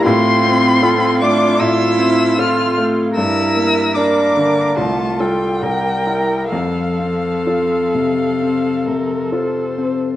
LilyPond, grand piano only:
\new Staff \with { instrumentName = "Grand piano" } { \time 4/4 \key f \major \tempo 4 = 72 a,8 c'8 <f' a'>8 a8 a,8 c'8 <f' a'>8 a8 | g,8 bes8 <d' bes'>8 d8 c,8 <f' a'>8 c,8 <e' bes'>8 | f,8 c'8 <f' a'>8 c8 c'8 c8 <f' a'>8 c'8 | }